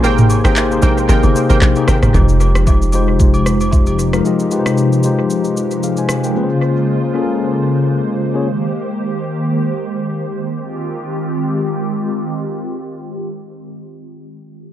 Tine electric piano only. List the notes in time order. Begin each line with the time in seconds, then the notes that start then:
0.04 A#3 D#4 G4 G#4 C5
0.45 A#3 D#4 G4 G#4 C5
0.71 A#3 D#4 G4 G#4 C5
1.09 A#3 D#4 G4 G#4 C5
1.35 A#3 D#4 G4 G#4 C5
1.76 A#3 D#4 G4 G#4 C5
2.14 G#3 D#4 F4 G4 B4
2.23 C5
2.93 G#3 D#4 F4 G4 C5
4.13 G#3 D#4 F4 G4 A#4
4.25 G#3 D#4 F4 G4 D#5
4.51 G#3 D#4 F4 G4 B4
4.59 C5
5.04 G#3 D#4 F4 G4 C5
5.84 G#4 F5
5.98 C5 G#5
6.25 A#4 G5
6.35 A#3 C#4 F4 G#4 B4
6.43 C5
7.14 A#3 C#4 F4 G#4 A4
7.22 A#4
8.34 A#3 C#4 F4 G#4 C#5